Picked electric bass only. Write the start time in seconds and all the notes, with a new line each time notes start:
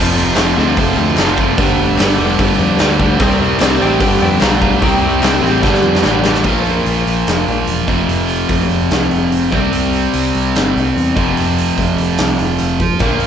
Already playing: F1
0.16 F1
0.36 F1
0.58 D2
0.77 F1
0.98 D2
1.19 F#1
1.58 G1
1.79 G1
2.00 G1
2.20 F1
2.39 G1
2.60 F2
2.80 D2
3.20 C2
3.40 C2
3.62 C2
3.82 A1
4.01 G1
4.22 F2
4.42 B1
4.82 C2
5.03 C2
5.23 C2
5.43 A1
5.64 G1
5.84 F2
6.05 A1
6.45 A#1
6.86 A#1
7.06 A#1
7.28 F1
7.47 A#1
7.67 E1
7.88 F1
8.09 F1
8.50 F1
8.70 F1
8.91 C2
9.11 F1
9.32 F1
9.53 C2
9.73 C2
10.14 C2
10.35 C2
10.56 G1
10.76 C2
10.96 E2
11.17 F1
11.36 F1
11.78 F1
11.99 F1
12.20 C2
12.40 F1
12.61 F1
13.01 A#1